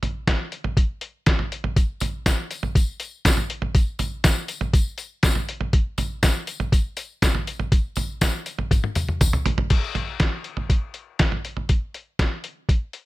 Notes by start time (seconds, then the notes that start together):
0.03 closed hi-hat, floor tom
0.27 kick, snare, closed hi-hat
0.52 closed hi-hat
0.64 floor tom
0.77 kick, closed hi-hat
1.01 closed hi-hat
1.26 kick, snare, closed hi-hat
1.39 floor tom
1.52 closed hi-hat
1.64 floor tom
1.76 kick, closed hi-hat, tambourine
2.00 closed hi-hat, floor tom, tambourine
2.26 kick, snare, closed hi-hat, tambourine
2.51 closed hi-hat, tambourine
2.63 floor tom
2.75 kick, closed hi-hat, tambourine
3.00 closed hi-hat, tambourine
3.25 kick, snare, closed hi-hat, tambourine
3.37 floor tom
3.50 closed hi-hat
3.62 floor tom
3.75 kick, closed hi-hat, tambourine
3.99 closed hi-hat, floor tom, tambourine
4.24 kick, snare, closed hi-hat, tambourine
4.48 closed hi-hat, tambourine
4.61 floor tom
4.73 kick, closed hi-hat, tambourine
4.98 closed hi-hat, tambourine
5.23 kick, snare, closed hi-hat, tambourine
5.35 floor tom
5.49 closed hi-hat
5.61 floor tom
5.73 kick, closed hi-hat
5.98 closed hi-hat, floor tom, tambourine
6.23 kick, snare, closed hi-hat, tambourine
6.47 closed hi-hat, tambourine
6.60 floor tom
6.72 kick, closed hi-hat, tambourine
6.97 closed hi-hat, tambourine
7.22 kick, snare, closed hi-hat, tambourine
7.35 floor tom
7.47 closed hi-hat, tambourine
7.60 floor tom
7.72 kick, closed hi-hat, tambourine
7.96 closed hi-hat, floor tom, tambourine
8.21 kick, snare, closed hi-hat, tambourine
8.46 closed hi-hat, tambourine
8.59 floor tom
8.71 kick, closed hi-hat, high tom, tambourine
8.84 high tom
8.95 closed hi-hat, mid tom, tambourine
9.09 mid tom
9.21 kick, closed hi-hat, mid tom, tambourine
9.33 mid tom
9.46 closed hi-hat, floor tom
9.58 floor tom
9.70 kick, closed hi-hat, crash
9.95 closed hi-hat, floor tom
10.20 kick, snare, closed hi-hat
10.44 closed hi-hat
10.57 floor tom
10.70 kick, closed hi-hat
10.94 closed hi-hat
11.19 kick, snare, closed hi-hat
11.32 floor tom
11.45 closed hi-hat
11.57 floor tom
11.69 kick, closed hi-hat
11.94 closed hi-hat
12.19 kick, snare, closed hi-hat
12.44 closed hi-hat
12.69 kick, closed hi-hat
12.93 closed hi-hat